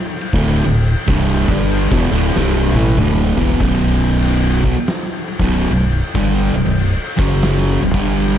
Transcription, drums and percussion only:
0.21 crash
0.33 kick
0.44 crash
0.65 snare
0.85 crash
1.08 kick, crash
1.48 kick, crash
1.71 crash
1.92 kick
2.12 crash
2.36 snare
2.75 high tom
2.86 high tom
2.98 mid tom
3.38 floor tom
3.49 floor tom
3.60 kick, crash
4.00 crash
4.23 crash
4.64 kick, crash
4.87 snare, crash
5.28 crash
5.40 kick
5.52 crash
5.92 crash
6.15 kick, crash
6.56 crash
6.79 crash
7.19 kick, crash
7.42 snare, crash
7.82 crash
7.94 kick
8.06 crash
8.26 snare

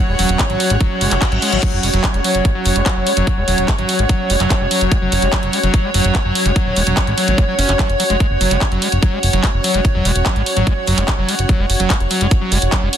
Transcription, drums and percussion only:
0.19 open hi-hat
0.29 closed hi-hat
0.39 kick, clap, closed hi-hat
0.50 closed hi-hat
0.60 open hi-hat
0.70 closed hi-hat
0.81 kick, closed hi-hat
1.01 open hi-hat
1.11 clap, closed hi-hat
1.22 kick, clap, closed hi-hat
1.32 closed hi-hat
1.42 open hi-hat
1.53 closed hi-hat
1.63 kick, closed hi-hat, crash
1.83 open hi-hat
1.94 closed hi-hat
2.04 kick, clap, closed hi-hat
2.14 closed hi-hat
2.24 open hi-hat
2.35 closed hi-hat
2.45 kick, closed hi-hat
2.66 open hi-hat
2.76 closed hi-hat
2.86 kick, clap, closed hi-hat
3.07 open hi-hat
3.17 closed hi-hat
3.27 kick, closed hi-hat
3.48 open hi-hat
3.58 closed hi-hat
3.68 kick, clap, closed hi-hat
3.79 closed hi-hat
3.89 open hi-hat
3.99 closed hi-hat
4.09 kick, closed hi-hat
4.30 open hi-hat
4.40 clap, closed hi-hat
4.50 kick, clap, closed hi-hat
4.71 open hi-hat
4.81 closed hi-hat
4.92 kick, closed hi-hat
5.12 open hi-hat
5.22 closed hi-hat
5.33 kick, clap, closed hi-hat
5.43 closed hi-hat
5.53 open hi-hat
5.63 closed hi-hat
5.74 kick, closed hi-hat
5.94 open hi-hat
6.05 closed hi-hat
6.15 kick, clap, closed hi-hat
6.35 open hi-hat
6.46 closed hi-hat
6.56 kick, closed hi-hat
6.76 open hi-hat
6.87 closed hi-hat
6.97 kick, clap, closed hi-hat
7.07 closed hi-hat
7.18 open hi-hat
7.28 closed hi-hat
7.38 kick, closed hi-hat
7.59 open hi-hat
7.69 clap, closed hi-hat
7.79 kick, clap, closed hi-hat
7.90 closed hi-hat
8.00 open hi-hat
8.10 closed hi-hat
8.20 kick, closed hi-hat
8.41 open hi-hat
8.51 closed hi-hat
8.61 kick, clap, closed hi-hat
8.72 closed hi-hat
8.82 open hi-hat
8.92 closed hi-hat
9.03 kick, closed hi-hat
9.23 open hi-hat
9.33 closed hi-hat
9.44 kick, clap, closed hi-hat
9.64 open hi-hat
9.74 closed hi-hat
9.85 kick, closed hi-hat
10.05 open hi-hat
10.16 closed hi-hat
10.26 kick, clap, closed hi-hat
10.36 closed hi-hat
10.46 open hi-hat
10.57 closed hi-hat
10.67 kick, closed hi-hat
10.87 open hi-hat
10.98 clap, closed hi-hat
11.08 kick, clap, closed hi-hat
11.29 open hi-hat
11.39 closed hi-hat
11.49 kick, closed hi-hat
11.70 open hi-hat
11.80 closed hi-hat
11.90 kick, clap, closed hi-hat
12.00 closed hi-hat
12.11 open hi-hat
12.21 closed hi-hat
12.31 kick, closed hi-hat
12.52 open hi-hat
12.62 closed hi-hat
12.72 kick, clap, closed hi-hat
12.93 open hi-hat

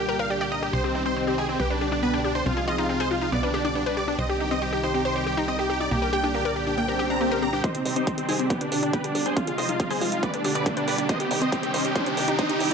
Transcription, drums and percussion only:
0.41 closed hi-hat
0.73 closed hi-hat
0.84 closed hi-hat
1.06 closed hi-hat
1.16 closed hi-hat
1.27 closed hi-hat
1.49 closed hi-hat
1.60 closed hi-hat
1.70 closed hi-hat
2.03 closed hi-hat
2.14 closed hi-hat
2.35 closed hi-hat
2.46 closed hi-hat
2.57 closed hi-hat
2.89 closed hi-hat
3.21 closed hi-hat
3.32 closed hi-hat
3.43 closed hi-hat
3.65 closed hi-hat
3.75 closed hi-hat
3.86 closed hi-hat
4.08 closed hi-hat
4.19 closed hi-hat
4.29 closed hi-hat
4.51 closed hi-hat
4.62 closed hi-hat
4.73 closed hi-hat
4.94 closed hi-hat
5.05 closed hi-hat
5.16 closed hi-hat
5.37 closed hi-hat
5.48 closed hi-hat
5.59 closed hi-hat
5.80 closed hi-hat
5.91 closed hi-hat
6.02 closed hi-hat
6.24 closed hi-hat
6.34 closed hi-hat
6.45 closed hi-hat
6.67 closed hi-hat
6.78 closed hi-hat
6.88 closed hi-hat
7.10 closed hi-hat
7.21 closed hi-hat
7.32 closed hi-hat
7.53 closed hi-hat
7.64 kick, closed hi-hat
7.75 closed hi-hat
7.85 open hi-hat
7.96 closed hi-hat
8.07 kick, closed hi-hat
8.18 closed hi-hat
8.29 open hi-hat
8.39 closed hi-hat
8.50 kick, closed hi-hat
8.61 closed hi-hat
8.72 open hi-hat
8.83 closed hi-hat
8.93 kick, closed hi-hat
9.04 closed hi-hat
9.15 open hi-hat
9.26 closed hi-hat
9.37 kick, closed hi-hat
9.47 closed hi-hat
9.58 open hi-hat
9.69 closed hi-hat
9.80 kick, closed hi-hat
9.90 open hi-hat
10.01 open hi-hat
10.12 closed hi-hat
10.23 kick, closed hi-hat
10.34 closed hi-hat
10.44 open hi-hat
10.55 closed hi-hat
10.66 kick, closed hi-hat
10.77 closed hi-hat
10.88 open hi-hat
10.98 closed hi-hat
11.09 kick, closed hi-hat
11.20 closed hi-hat
11.31 open hi-hat
11.42 closed hi-hat
11.52 kick, closed hi-hat
11.63 closed hi-hat
11.74 open hi-hat
11.85 closed hi-hat
11.96 kick, closed hi-hat
12.06 closed hi-hat
12.17 open hi-hat
12.28 closed hi-hat
12.39 kick, closed hi-hat
12.50 closed hi-hat
12.60 open hi-hat

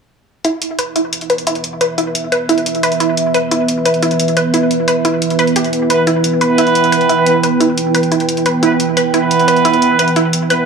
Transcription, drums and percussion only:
0.45 closed hi-hat
0.62 closed hi-hat
0.79 closed hi-hat
0.96 closed hi-hat
1.13 closed hi-hat
1.21 closed hi-hat
1.30 closed hi-hat
1.38 closed hi-hat
1.47 closed hi-hat
1.55 closed hi-hat
1.64 closed hi-hat
1.81 closed hi-hat
1.98 closed hi-hat
2.15 closed hi-hat
2.32 closed hi-hat
2.49 closed hi-hat
2.58 closed hi-hat
2.66 closed hi-hat
2.75 closed hi-hat
2.83 closed hi-hat
2.92 closed hi-hat
3.00 closed hi-hat
3.17 closed hi-hat
3.34 closed hi-hat
3.51 closed hi-hat
3.68 closed hi-hat
3.85 closed hi-hat
3.94 closed hi-hat
4.02 closed hi-hat
4.11 closed hi-hat
4.20 closed hi-hat
4.28 closed hi-hat
4.37 closed hi-hat
4.54 closed hi-hat
4.71 closed hi-hat
4.88 closed hi-hat
5.05 closed hi-hat
5.22 closed hi-hat
5.30 closed hi-hat
5.39 closed hi-hat
5.47 closed hi-hat
5.56 closed hi-hat
5.64 closed hi-hat
5.73 closed hi-hat
5.90 closed hi-hat
6.07 closed hi-hat
6.24 closed hi-hat
6.41 closed hi-hat
6.58 closed hi-hat
6.67 closed hi-hat
6.75 closed hi-hat
6.84 closed hi-hat
6.92 closed hi-hat
7.01 closed hi-hat
7.09 closed hi-hat
7.26 closed hi-hat
7.43 closed hi-hat
7.61 closed hi-hat
7.78 closed hi-hat
7.95 closed hi-hat
8.03 closed hi-hat
8.12 closed hi-hat
8.20 closed hi-hat
8.29 closed hi-hat
8.37 closed hi-hat
8.46 closed hi-hat
8.63 closed hi-hat
8.80 closed hi-hat
8.97 closed hi-hat
9.14 closed hi-hat
9.31 closed hi-hat
9.40 closed hi-hat
9.48 closed hi-hat
9.56 closed hi-hat
9.65 closed hi-hat
9.74 closed hi-hat
9.82 closed hi-hat
9.99 closed hi-hat
10.08 closed hi-hat
10.16 closed hi-hat
10.33 closed hi-hat
10.50 closed hi-hat

